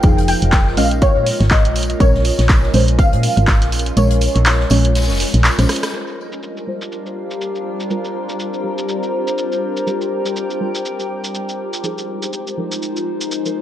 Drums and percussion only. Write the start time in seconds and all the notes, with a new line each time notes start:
0.03 kick, closed hi-hat, tambourine
0.18 closed hi-hat
0.28 open hi-hat, tambourine
0.42 closed hi-hat
0.52 kick, snare, clap, closed hi-hat, tambourine
0.67 snare
0.77 open hi-hat, tambourine
0.91 closed hi-hat
1.02 kick, closed hi-hat, tambourine
1.26 snare, open hi-hat, tambourine
1.41 snare, closed hi-hat
1.51 kick, snare, clap, tambourine
1.65 closed hi-hat
1.75 open hi-hat, tambourine
1.83 closed hi-hat
1.90 closed hi-hat
2.00 kick, closed hi-hat, tambourine
2.14 snare
2.25 open hi-hat, tambourine
2.39 snare, closed hi-hat
2.49 kick, snare, clap, closed hi-hat, tambourine
2.63 snare
2.74 open hi-hat, tambourine
2.88 closed hi-hat
2.99 kick, closed hi-hat, tambourine
3.13 closed hi-hat
3.23 open hi-hat, tambourine
3.37 closed hi-hat
3.47 kick, snare, clap, tambourine
3.62 snare, closed hi-hat
3.72 open hi-hat, tambourine
3.79 closed hi-hat
3.86 closed hi-hat
3.97 closed hi-hat, tambourine
4.11 closed hi-hat
4.21 open hi-hat, tambourine
4.36 closed hi-hat
4.46 snare, clap, closed hi-hat, tambourine
4.60 snare
4.70 open hi-hat, tambourine
4.85 closed hi-hat
4.95 snare, closed hi-hat, tambourine
5.02 snare, tambourine
5.10 snare, tambourine
5.15 snare, tambourine
5.20 snare, open hi-hat, tambourine
5.34 snare, closed hi-hat
5.44 snare, clap, tambourine
5.58 cross-stick, snare, closed hi-hat, tambourine
5.69 cross-stick, snare, open hi-hat, tambourine
5.76 closed hi-hat
5.82 cross-stick, snare, closed hi-hat, tambourine
5.94 shaker
6.08 shaker
6.32 shaker
6.43 shaker
6.57 shaker
6.82 shaker
6.92 shaker
7.06 shaker
7.31 shaker
7.41 shaker
7.55 shaker
7.80 shaker
7.90 shaker
8.04 shaker
8.29 shaker
8.40 shaker
8.54 shaker
8.78 shaker
8.89 shaker
9.03 shaker
9.28 shaker
9.38 shaker
9.52 shaker
9.77 shaker
9.87 shaker
10.01 shaker
10.26 shaker
10.36 shaker
10.50 shaker
10.75 shaker
10.85 shaker
11.00 shaker
11.24 shaker
11.35 shaker
11.49 shaker
11.73 shaker
11.84 shaker
11.98 shaker
12.23 shaker
12.33 shaker
12.47 shaker
12.72 shaker
12.82 shaker
12.96 shaker
13.21 shaker
13.32 shaker
13.46 shaker